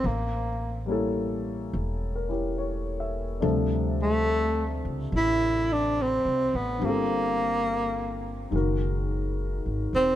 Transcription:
0.04 upright bass A1, tenor saxophone A#3
0.86 upright piano G3 A#3 C#4
0.90 upright piano E4 A4
1.73 upright bass E1
2.15 upright piano A#4
2.29 upright piano C#4 E4 G4 A#4
2.58 upright piano C#5
3.00 upright piano E5
3.40 upright bass D2, upright piano C3 F3 G3 D4 A4
4.01 tenor saxophone A3
4.85 upright bass C#2
5.12 upright bass A1
5.16 tenor saxophone E4
5.73 tenor saxophone D4
6.02 tenor saxophone C4
6.25 upright bass C2
6.54 upright bass A1, tenor saxophone B3
6.78 upright bass G1, upright piano D3 G3
6.83 tenor saxophone A#3, upright piano C4 F4
6.89 upright piano A4
8.50 upright bass F#1, upright piano C#3 D#3 G#3 F#4
8.56 upright piano A#4
9.66 upright bass G#1
9.93 upright bass E1, tenor saxophone C4

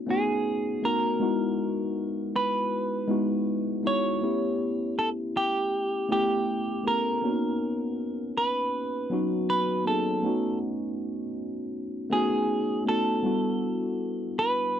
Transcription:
Already playing: tine electric piano A3 B3 C#4 D#4 F#4
0.07 tine electric piano A3 B3 C#4 D#4 F#4, clean electric guitar G#4
0.82 tine electric piano A3 B3 C#4 D#4 F#4, clean electric guitar A#4
1.19 tine electric piano G#3 B3 D#4 E4 F#4
2.36 clean electric guitar B4
3.07 tine electric piano G#3 B3 D#4 E4 F#4
3.83 tine electric piano G#3 B3 D#4 E4 F#4
3.87 clean electric guitar C#5
4.21 tine electric piano A3 B3 C#4 E4 G4
4.99 clean electric guitar A4
5.37 clean electric guitar G4
6.08 tine electric piano A3 B3 C#4 E4 G4, clean electric guitar G4
6.83 tine electric piano A3 B3 C#4 E4 A4
6.88 clean electric guitar A#4
7.22 tine electric piano A#3 B3 C#4 D4 F#4
7.31 tine electric piano D#4
8.37 clean electric guitar B4
9.10 tine electric piano F#3 B3 C#4 D#4 F#4
9.50 clean electric guitar B4
9.85 tine electric piano A#3 B3 C#4 D#4 G#4, clean electric guitar A4
10.22 tine electric piano A3 B3 C#4 D#4 F#4
12.10 tine electric piano A3 B3 C#4 D#4 F#4, clean electric guitar G#4
12.85 tine electric piano A3 B3 C#4 D#4 F#4, clean electric guitar A4
13.22 tine electric piano G3 B3 D4 E4 F#4
14.39 clean electric guitar B4

